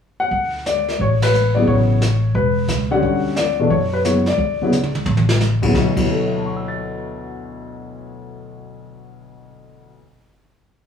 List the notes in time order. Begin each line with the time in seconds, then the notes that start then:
0.20 F#5
0.31 D2, brush sweep, kick
0.66 D5, snare, hi-hat pedal
0.89 snare
0.99 A1 C#5, brush sweep, kick
1.22 B4, snare, ride
1.34 hi-hat pedal
1.55 C#3 F#3 B3 E4 D5
1.67 A1 C#5, brush sweep, kick
2.02 snare, hi-hat pedal
2.35 E1 B4, brush sweep, kick
2.68 C#2, snare, hi-hat pedal
2.91 D3 G3 C#4 F#4 F#5
3.03 D2, brush sweep, kick
3.36 D5, snare, hi-hat pedal
3.59 B2 E3 A3 D4
3.70 F#2 C#5, brush sweep, kick
3.94 B4
4.04 C#3 F#3 B3 E4 C#5, snare, hi-hat pedal
4.26 D5, snare
4.38 D2, brush sweep, kick
4.62 C#3 F#3 B3 E4
4.72 hi-hat pedal, mid tom
4.83 mid tom
4.95 mid tom
5.06 A1, high tom
5.17 high tom
5.29 snare
5.40 snare, hi-hat pedal
5.62 D2 C#3 F#3 B3 E4, kick, crash
5.74 D2 B2 F#3 E4, kick, snare
5.96 D2 B2 F#3 E4, kick, crash
6.11 A4
6.19 C#5
6.27 E5
6.36 A5
6.46 C#6
6.56 E6
6.68 A6